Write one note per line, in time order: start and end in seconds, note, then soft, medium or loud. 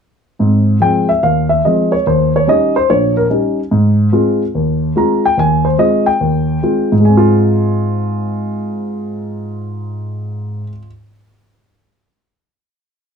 0.39 0.76 G#2 medium
0.39 0.75 C4 medium
0.80 1.09 F3 soft
0.80 1.09 G#3 soft
0.80 1.10 C4 soft
0.80 1.08 G5 medium
1.09 1.22 E5 medium
1.23 1.59 D#2 medium
1.23 1.49 F5 medium
1.49 1.63 E5 medium
1.65 1.93 F3 soft
1.65 1.93 G#3 soft
1.65 1.94 C4 soft
1.65 1.91 D#5 medium
1.92 2.05 C#5 medium
2.07 2.42 D#2 medium
2.07 2.33 C5 medium
2.36 2.48 C#5 medium
2.47 2.76 G3 soft
2.47 2.76 C#4 soft
2.47 2.76 D#4 soft
2.47 2.74 D#5 medium
2.76 2.89 C5 medium
2.90 3.25 A#1 medium
2.90 3.16 C#5 medium
3.17 3.25 A#4 medium
3.30 3.59 G3 soft
3.30 3.59 C#4 soft
3.30 3.59 D#4 soft
3.71 4.07 G#2 medium
4.12 4.41 G#3 soft
4.12 4.42 C4 soft
4.12 4.42 F4 medium
4.55 4.91 D#2 medium
4.96 5.25 G#3 soft
4.96 5.25 C4 soft
4.96 5.25 F4 medium
4.96 5.23 A#5 medium
5.26 5.38 G5 medium
5.37 5.74 D#2 medium
5.37 5.65 G#5 medium
5.65 5.79 C5 medium
5.78 6.08 G#3 medium
5.78 6.08 C4 soft
5.78 6.08 F4 soft
5.78 6.06 D#5 medium
6.06 6.93 G5 medium
6.21 6.57 D#2 medium
6.63 6.91 G#3 soft
6.63 6.92 C4 soft
6.63 6.92 F4 soft
6.92 10.61 G#2 medium
7.00 10.69 G#3 medium
7.05 10.78 C4 medium
7.05 10.70 G#5 medium
7.17 10.87 F4 medium